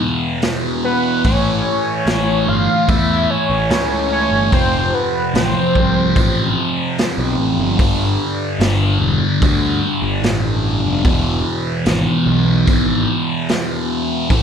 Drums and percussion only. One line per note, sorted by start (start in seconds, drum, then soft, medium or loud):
0.42 snare loud
0.42 open hi-hat soft
1.24 kick loud
1.24 open hi-hat soft
2.07 snare loud
2.07 open hi-hat soft
2.89 kick loud
2.89 open hi-hat soft
3.70 snare loud
3.70 open hi-hat soft
4.53 kick loud
4.53 open hi-hat soft
5.35 snare loud
5.35 open hi-hat medium
5.75 kick medium
6.16 kick loud
6.16 open hi-hat medium
6.98 snare loud
6.98 open hi-hat soft
7.79 kick loud
7.79 open hi-hat soft
8.61 snare loud
8.61 open hi-hat soft
9.42 kick loud
9.42 open hi-hat soft
10.24 snare loud
10.24 open hi-hat soft
11.05 kick loud
11.05 open hi-hat soft
11.86 snare loud
11.86 open hi-hat soft
12.67 kick loud
12.67 open hi-hat soft
13.49 snare medium
13.49 open hi-hat soft
14.30 kick loud
14.30 open hi-hat soft